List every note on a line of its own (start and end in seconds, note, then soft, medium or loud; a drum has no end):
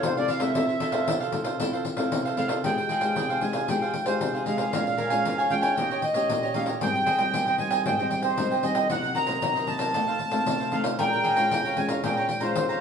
0.00 0.53 C3 medium
0.00 0.11 C4 medium
0.00 0.12 E4 medium
0.00 0.12 A4 medium
0.00 0.15 A4 medium
0.00 0.15 C5 medium
0.00 0.16 C5 medium
0.00 0.14 F5 medium
0.00 pandeiro medium
0.17 0.39 C4 medium
0.17 0.39 E4 medium
0.17 0.39 A4 medium
0.17 0.28 A4 medium
0.17 0.29 C5 medium
0.17 0.30 D5 medium
0.17 0.29 F5 medium
0.17 pandeiro soft
0.28 0.41 E4 medium
0.28 0.41 A4 medium
0.28 0.40 C5 medium
0.28 0.42 F5 loud
0.28 0.39 F5 medium
0.28 pandeiro medium
0.40 0.51 C4 medium
0.40 0.51 E4 medium
0.40 0.51 A4 medium
0.40 0.54 A4 soft
0.40 0.54 C5 medium
0.40 1.16 E5 medium
0.40 0.53 F5 medium
0.40 pandeiro medium
0.55 1.05 F3 medium
0.55 0.80 C4 medium
0.55 0.68 E4 soft
0.55 0.81 E4 medium
0.55 0.68 A4 soft
0.55 0.81 A4 medium
0.55 0.68 C5 medium
0.55 0.69 F5 medium
0.55 pandeiro medium
0.69 muted cavaquinho stroke soft
0.69 pandeiro soft
0.80 0.93 E4 medium
0.80 0.93 A4 medium
0.80 0.92 C5 medium
0.80 0.91 F5 medium
0.80 pandeiro medium
0.92 1.29 C4 medium
0.92 1.29 E4 medium
0.92 1.29 A4 medium
0.92 1.06 A4 medium
0.92 1.06 C5 medium
0.92 1.05 F5 medium
0.92 pandeiro medium
1.07 1.57 C3 medium
1.07 1.19 E4 medium
1.07 1.20 A4 medium
1.07 1.20 C5 medium
1.07 1.19 F5 medium
1.07 pandeiro medium
1.20 1.45 A4 medium
1.20 1.44 C5 medium
1.20 1.43 F5 medium
1.20 pandeiro soft
1.32 1.49 C4 medium
1.32 1.49 E4 medium
1.32 1.49 A4 medium
1.32 pandeiro medium
1.44 1.59 A4 medium
1.44 1.58 C5 medium
1.44 1.58 F5 medium
1.44 pandeiro medium
1.60 2.10 F3 medium
1.60 1.95 C4 medium
1.60 1.72 E4 medium
1.60 1.95 E4 medium
1.60 1.72 A4 medium
1.60 1.95 A4 medium
1.60 1.73 C5 medium
1.60 1.72 F5 medium
1.60 pandeiro medium
1.73 1.84 A4 medium
1.73 1.85 C5 medium
1.73 1.85 F5 medium
1.73 pandeiro soft
1.85 muted cavaquinho stroke soft
1.85 pandeiro medium
1.97 2.33 C4 medium
1.97 2.33 E4 medium
1.97 2.34 A4 medium
1.97 2.24 A4 medium
1.97 2.24 C5 medium
1.97 2.23 F5 medium
1.97 pandeiro medium
2.12 2.62 C3 medium
2.12 pandeiro medium
2.25 2.36 A4 medium
2.25 2.37 C5 medium
2.25 2.37 F5 medium
2.25 pandeiro soft
2.36 2.53 C4 medium
2.36 2.49 E4 medium
2.36 2.54 E4 medium
2.36 2.49 A4 medium
2.36 2.54 A4 medium
2.36 2.48 C5 medium
2.36 2.49 F5 medium
2.36 2.47 F5 medium
2.36 pandeiro medium
2.48 2.63 A4 medium
2.48 2.62 C5 medium
2.48 2.62 F5 medium
2.48 pandeiro medium
2.64 3.14 F3 medium
2.64 2.89 G#3 soft
2.64 2.76 D#4 soft
2.64 2.89 D#4 soft
2.64 2.89 G4 medium
2.64 2.76 G#4 soft
2.64 2.77 C5 soft
2.64 2.77 F5 soft
2.64 3.45 G5 medium
2.64 pandeiro medium
2.78 muted cavaquinho stroke soft
2.78 pandeiro soft
2.89 3.02 D#4 medium
2.89 3.02 G#4 medium
2.89 3.01 C5 medium
2.89 3.00 F5 medium
2.89 pandeiro soft
3.01 3.38 G#3 soft
3.01 3.38 D#4 soft
3.01 3.38 G4 soft
3.01 3.15 G#4 soft
3.01 3.15 C5 medium
3.01 3.14 F5 medium
3.01 pandeiro medium
3.16 3.66 C3 medium
3.16 3.29 D#4 soft
3.16 3.29 G#4 soft
3.16 3.29 C5 medium
3.16 3.29 F5 soft
3.16 pandeiro medium
3.30 3.55 G#4 soft
3.30 3.54 C5 medium
3.30 3.52 F5 medium
3.30 pandeiro soft
3.41 3.64 G#3 soft
3.41 3.65 D#4 medium
3.41 3.65 G4 medium
3.41 3.69 G#5 medium
3.41 pandeiro medium
3.53 3.68 G#4 medium
3.53 3.67 C5 medium
3.53 3.67 F5 medium
3.53 pandeiro medium
3.68 4.19 F3 medium
3.68 3.93 G#3 soft
3.68 3.81 D#4 soft
3.68 3.94 D#4 medium
3.68 3.94 G4 medium
3.68 3.81 G#4 soft
3.68 3.81 C5 medium
3.68 3.81 F5 soft
3.68 4.05 G5 medium
3.68 pandeiro medium
3.82 3.93 G#4 medium
3.82 3.94 C5 medium
3.82 3.94 F5 medium
3.82 pandeiro soft
3.94 muted cavaquinho stroke soft
3.94 pandeiro medium
4.05 4.42 G#3 soft
4.05 4.43 D#4 medium
4.05 4.43 G4 medium
4.05 4.33 G#4 soft
4.05 4.43 C5 medium
4.05 4.32 C5 medium
4.05 4.32 F5 medium
4.05 pandeiro medium
4.21 4.71 C3 medium
4.21 pandeiro medium
4.34 4.45 G#4 medium
4.34 4.45 C5 medium
4.34 4.46 F5 medium
4.34 pandeiro soft
4.45 4.62 G#3 medium
4.45 4.58 D#4 soft
4.45 4.62 D#4 soft
4.45 4.63 G4 medium
4.45 4.59 G#4 medium
4.45 4.57 C5 medium
4.45 5.54 F5 medium
4.45 4.56 F5 medium
4.45 pandeiro medium
4.57 4.72 G#4 medium
4.57 4.71 C5 soft
4.57 4.71 F5 medium
4.57 pandeiro medium
4.73 5.23 A#2 medium
4.73 4.98 G#3 medium
4.73 4.98 C#4 soft
4.73 4.98 F4 medium
4.73 4.85 A#4 soft
4.73 4.85 C#5 soft
4.73 4.86 F5 soft
4.73 4.86 G#5 soft
4.73 pandeiro medium
4.87 muted cavaquinho stroke soft
4.87 pandeiro soft
4.97 5.10 A#4 medium
4.97 5.11 C#5 medium
4.97 5.10 F5 medium
4.97 5.08 G#5 medium
4.97 pandeiro soft
5.10 5.47 G#3 medium
5.10 5.47 C#4 soft
5.10 5.47 F4 medium
5.10 5.24 C#5 soft
5.10 5.24 F5 medium
5.10 5.23 G#5 medium
5.10 pandeiro medium
5.25 5.75 F2 medium
5.25 5.37 A#4 soft
5.25 5.37 C#5 soft
5.25 5.38 F5 soft
5.25 5.37 G#5 medium
5.25 pandeiro medium
5.38 5.63 C#5 medium
5.38 5.62 F5 medium
5.38 5.60 G#5 medium
5.38 pandeiro soft
5.50 5.73 G#3 medium
5.50 5.73 C#4 medium
5.50 5.73 F4 medium
5.50 6.05 G5 medium
5.50 pandeiro medium
5.61 5.76 C#5 medium
5.61 5.76 F5 medium
5.61 5.75 G#5 medium
5.61 pandeiro medium
5.77 6.27 D#3 medium
5.77 6.02 A#3 medium
5.77 6.02 C#4 medium
5.77 5.89 D#4 soft
5.77 5.90 G4 soft
5.77 6.02 G4 medium
5.77 5.90 C#5 soft
5.77 5.89 D#5 medium
5.77 pandeiro medium
5.90 6.01 G4 medium
5.90 6.02 C#5 medium
5.90 6.02 D#5 medium
5.90 pandeiro soft
6.02 6.57 D#5 medium
6.02 muted cavaquinho stroke soft
6.02 pandeiro medium
6.14 6.51 A#3 medium
6.14 6.51 C#4 medium
6.14 6.41 G4 medium
6.14 6.51 G4 medium
6.14 6.41 C#5 medium
6.14 6.40 D#5 medium
6.14 pandeiro medium
6.29 6.79 A#2 medium
6.29 pandeiro medium
6.42 6.54 G4 soft
6.42 6.54 C#5 medium
6.42 6.54 D#5 medium
6.42 pandeiro soft
6.54 6.71 A#3 medium
6.54 6.71 C#4 medium
6.54 6.67 D#4 soft
6.54 6.67 G4 medium
6.54 6.71 G4 medium
6.54 6.66 C#5 soft
6.54 6.65 D#5 medium
6.54 6.67 F5 medium
6.54 pandeiro medium
6.66 6.80 G4 soft
6.66 6.80 C#5 medium
6.66 6.79 D#5 medium
6.66 pandeiro medium
6.81 7.32 G#2 medium
6.81 7.07 G3 medium
6.81 7.07 C4 medium
6.81 7.07 D#4 medium
6.81 6.93 G#4 soft
6.81 6.94 C5 soft
6.81 6.94 D#5 soft
6.81 7.56 G5 loud
6.81 6.94 G5 medium
6.81 pandeiro medium
6.94 muted cavaquinho stroke soft
6.94 pandeiro soft
7.06 7.19 G#4 medium
7.06 7.19 C5 medium
7.06 7.18 D#5 medium
7.06 7.17 G5 medium
7.06 pandeiro medium
7.18 7.55 G3 medium
7.18 7.55 C4 medium
7.18 7.55 D#4 medium
7.18 7.33 C5 medium
7.18 7.32 D#5 medium
7.18 7.32 G5 medium
7.18 pandeiro medium
7.33 7.84 D#3 medium
7.33 7.46 G#4 soft
7.33 7.46 C5 medium
7.33 7.46 D#5 medium
7.33 7.46 G5 medium
7.33 pandeiro medium
7.47 7.72 C5 medium
7.47 7.71 D#5 medium
7.47 7.69 G5 medium
7.47 pandeiro soft
7.58 7.95 G3 medium
7.58 7.95 C4 medium
7.58 7.95 D#4 medium
7.58 7.84 G#5 medium
7.58 pandeiro medium
7.71 7.85 C5 medium
7.71 7.85 D#5 medium
7.71 7.84 G5 medium
7.71 pandeiro medium
7.86 8.36 G#2 medium
7.86 7.98 G#4 medium
7.86 7.98 C5 medium
7.86 7.99 D#5 medium
7.86 8.22 G5 medium
7.86 7.98 G5 medium
7.86 pandeiro medium
7.99 8.34 G3 medium
7.99 8.35 C4 medium
7.99 8.35 D#4 medium
7.99 8.10 C5 medium
7.99 8.10 D#5 medium
7.99 8.11 G5 medium
7.99 pandeiro soft
8.11 muted cavaquinho stroke soft
8.11 pandeiro medium
8.22 8.64 C5 medium
8.22 8.50 C5 medium
8.22 8.50 D#5 medium
8.22 8.49 G5 medium
8.22 pandeiro medium
8.38 8.88 D#3 medium
8.38 8.54 G3 medium
8.38 8.54 C4 medium
8.38 8.54 D#4 medium
8.38 pandeiro medium
8.51 8.63 C5 soft
8.51 8.63 D#5 medium
8.51 8.63 G5 medium
8.51 pandeiro soft
8.63 8.86 G3 medium
8.63 8.86 C4 medium
8.63 8.86 D#4 medium
8.63 8.76 G#4 soft
8.63 8.76 C5 soft
8.63 8.88 D#5 medium
8.63 8.75 D#5 medium
8.63 8.74 G5 medium
8.63 pandeiro medium
8.75 8.90 C5 soft
8.75 8.89 D#5 medium
8.75 8.88 G5 medium
8.75 pandeiro medium
8.90 9.40 C3 medium
8.90 9.15 F#3 medium
8.90 9.15 A#3 medium
8.90 9.16 D#4 medium
8.90 9.02 F#4 soft
8.90 9.03 A#4 medium
8.90 9.03 C5 medium
8.90 9.03 D#5 medium
8.90 9.18 F#5 loud
8.90 pandeiro medium
9.04 muted cavaquinho stroke soft
9.04 pandeiro soft
9.14 9.28 F#4 medium
9.14 9.28 A#4 medium
9.14 9.27 C5 medium
9.14 9.25 D#5 medium
9.14 9.70 A#5 loud
9.14 pandeiro medium
9.26 9.64 F#3 medium
9.26 9.64 A#3 medium
9.26 9.64 D#4 medium
9.26 9.41 A#4 medium
9.26 9.41 C5 medium
9.26 9.40 D#5 medium
9.26 pandeiro medium
9.42 9.92 C3 medium
9.42 9.54 F#4 soft
9.42 9.55 A#4 medium
9.42 9.55 C5 medium
9.42 9.54 D#5 medium
9.42 pandeiro medium
9.55 9.80 A#4 medium
9.55 9.79 C5 medium
9.55 9.78 D#5 medium
9.55 pandeiro soft
9.67 9.90 F#3 soft
9.67 9.90 A#3 medium
9.67 9.91 D#4 medium
9.67 10.76 A5 loud
9.67 pandeiro medium
9.79 9.94 A#4 medium
9.79 9.93 C5 medium
9.79 9.92 D#5 medium
9.79 pandeiro medium
9.94 10.45 F2 medium
9.94 10.20 D#3 medium
9.94 10.20 A3 medium
9.94 10.20 C4 medium
9.94 10.07 D#4 soft
9.94 10.07 A4 soft
9.94 10.07 C5 medium
9.94 10.07 F5 medium
9.94 pandeiro medium
10.08 10.19 A4 soft
10.08 10.19 C5 medium
10.08 10.19 F5 medium
10.08 pandeiro soft
10.19 muted cavaquinho stroke soft
10.19 pandeiro soft
10.31 10.68 D#3 medium
10.31 10.68 A3 medium
10.31 10.69 C4 medium
10.31 10.59 A4 medium
10.31 10.58 C5 medium
10.31 10.58 F5 medium
10.31 pandeiro medium
10.47 10.97 C3 medium
10.47 pandeiro medium
10.60 10.71 A4 soft
10.60 10.72 C5 soft
10.60 10.72 F5 medium
10.60 pandeiro soft
10.71 10.95 D#3 medium
10.71 10.95 A3 medium
10.71 10.95 C4 medium
10.71 10.84 D#4 medium
10.71 10.85 A4 soft
10.71 10.84 C5 medium
10.71 10.84 F5 medium
10.71 10.82 F5 medium
10.71 pandeiro soft
10.84 10.98 A4 soft
10.84 10.98 C5 medium
10.84 10.97 F5 medium
10.84 pandeiro medium
10.98 11.49 A#2 medium
10.98 11.34 G#3 medium
10.98 11.35 C#4 medium
10.98 11.35 F4 medium
10.98 11.11 G#4 soft
10.98 12.81 A#4 medium
10.98 11.11 C#5 soft
10.98 11.12 F5 soft
10.98 11.80 G5 loud
10.98 11.12 A#5 soft
10.98 pandeiro medium
11.13 muted cavaquinho stroke soft
11.13 pandeiro soft
11.24 11.37 G#4 medium
11.24 11.37 C#5 medium
11.24 11.36 F5 medium
11.24 11.34 A#5 medium
11.24 pandeiro medium
11.36 11.73 G#3 medium
11.36 11.73 C#4 medium
11.36 11.73 F4 medium
11.36 11.50 C#5 medium
11.36 11.50 F5 medium
11.36 11.49 A#5 medium
11.36 pandeiro medium
11.51 12.01 F2 medium
11.51 11.63 G#4 soft
11.51 11.64 C#5 soft
11.51 11.64 F5 medium
11.51 11.64 A#5 medium
11.51 pandeiro medium
11.65 11.90 C#5 medium
11.65 11.89 F5 medium
11.65 11.87 A#5 medium
11.65 pandeiro soft
11.77 11.99 G#3 soft
11.77 11.99 C#4 medium
11.77 12.00 F4 medium
11.77 11.89 G#5 medium
11.77 pandeiro medium
11.89 12.03 C#5 medium
11.89 12.02 F5 medium
11.89 12.02 A#5 medium
11.89 pandeiro medium
12.04 12.54 A#2 medium
12.04 12.28 G#3 medium
12.04 12.29 C#4 medium
12.04 12.29 F4 medium
12.04 12.16 G#4 soft
12.04 12.16 C#5 medium
12.04 12.17 F5 medium
12.04 12.44 G5 medium
12.04 12.16 A#5 medium
12.04 pandeiro medium
12.17 12.28 C#5 medium
12.17 12.28 F5 medium
12.17 12.28 A#5 medium
12.17 pandeiro soft
12.28 muted cavaquinho stroke soft
12.28 pandeiro medium
12.40 12.77 G#3 medium
12.40 12.77 C#4 medium
12.40 12.77 F4 medium
12.40 12.81 C5 medium
12.40 12.68 C#5 soft
12.40 12.67 F5 medium
12.40 12.67 A#5 medium
12.40 pandeiro medium
12.56 12.81 F2 medium
12.56 pandeiro medium
12.69 12.80 C#5 soft
12.69 12.81 F5 medium
12.69 12.81 A#5 medium
12.69 pandeiro soft